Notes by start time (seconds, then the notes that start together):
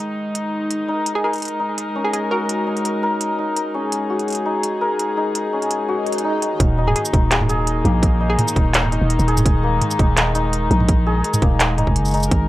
Already playing: D#3 G#3 D#4
0.35 closed hi-hat
0.71 closed hi-hat
0.88 D#4 A#4
1.06 closed hi-hat
1.15 G#4
1.24 G#4 A#4
1.33 closed hi-hat
1.36 closed hi-hat
1.38 closed hi-hat
1.40 closed hi-hat
1.42 closed hi-hat
1.45 closed hi-hat
1.47 closed hi-hat
1.49 closed hi-hat
1.60 D#4
1.78 closed hi-hat
1.95 C#4
2.05 G#4
2.13 G#4, closed hi-hat
2.31 F#4 A#4
2.49 closed hi-hat
2.67 D#4
2.77 closed hi-hat
2.85 closed hi-hat
3.03 A#4
3.21 closed hi-hat
3.39 D#4
3.56 closed hi-hat
3.74 C#4 G#4
3.92 closed hi-hat
4.10 F#4
4.19 closed hi-hat
4.28 closed hi-hat
4.30 closed hi-hat
4.33 closed hi-hat
4.35 closed hi-hat
4.46 D#4
4.63 closed hi-hat
4.81 A#4
4.99 closed hi-hat
5.17 D#4
5.35 closed hi-hat
5.53 C#4
5.62 closed hi-hat
5.71 closed hi-hat
5.88 F#4, swell
6.06 closed hi-hat
6.12 closed hi-hat
6.18 closed hi-hat
6.24 D#4
6.42 closed hi-hat
6.60 D#1 D#3 A#3 D#4, kick, closed hi-hat
6.78 D#4
6.87 G#4, mid tom
6.96 G#4, closed hi-hat
7.05 shaker
7.13 D#1 D#4, kick, closed hi-hat
7.31 G#4, clap, closed hi-hat
7.41 mid tom
7.49 G#4, closed hi-hat, shaker
7.67 closed hi-hat
7.85 A#1 A#3, closed hi-hat, mid tom
8.03 kick, closed hi-hat
8.20 D#4
8.30 G#4
8.39 closed hi-hat, mid tom
8.48 shaker
8.56 D#1 D#4, kick, closed hi-hat
8.74 clap, closed hi-hat
8.84 mid tom
8.92 D#4, closed hi-hat
9.01 D#1
9.10 closed hi-hat
9.19 D#1, shaker
9.28 G#4, closed hi-hat
9.37 mid tom, shaker
9.45 D#1 G#3, kick, closed hi-hat
9.63 A#3
9.82 closed hi-hat, mid tom
9.91 shaker
9.99 D#1 D#4, kick, closed hi-hat
10.17 clap, closed hi-hat
10.35 D#4, closed hi-hat, shaker
10.53 closed hi-hat
10.71 A#1 D#4, closed hi-hat
10.80 mid tom
10.89 kick, closed hi-hat
11.06 G#4
11.24 closed hi-hat
11.34 mid tom, shaker
11.42 D#1 A#3, kick, closed hi-hat
11.60 clap, closed hi-hat
11.78 D#4, closed hi-hat, mid tom
11.87 D#1, kick
11.96 F#1, closed hi-hat
12.05 shaker
12.08 shaker
12.11 D#4, closed hi-hat, shaker
12.14 shaker
12.17 shaker
12.20 shaker
12.23 shaker
12.31 G#1 D#4 A#4, kick, closed hi-hat